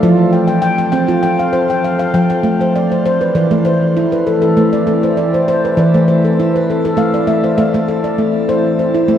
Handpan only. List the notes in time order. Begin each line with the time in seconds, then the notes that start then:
Already playing: D5 F5
0.03 F3 F4
0.33 G5
0.48 G5
0.62 G5
0.78 G5
0.92 C4 G5
1.08 F4
1.23 G5
1.39 F5
1.53 C5
1.70 G5
1.84 F5
1.99 F5
2.14 F3 G5
2.30 G5
2.43 A3
2.61 C5
2.76 D5
2.92 C5
3.06 C5
3.21 B4
3.35 E3 D5
3.51 A3
3.65 C5
3.97 E4
4.12 B4
4.27 A4
4.42 A4
4.57 A3
4.73 D5
4.87 A3
5.03 C5
5.17 D5
5.34 C5
5.48 C5
5.65 B4
5.77 E3 D5
5.94 A3
6.08 C5
6.25 A4
6.40 E4
6.56 B4
6.70 A4
6.85 A4
6.97 A3 F5
7.14 D5
7.27 A3 E5
7.44 C5
7.58 A3 F5
7.74 A3 A4
7.88 A4
8.04 D5
8.18 A3
8.49 C5
8.79 C5
8.94 E4
9.08 A3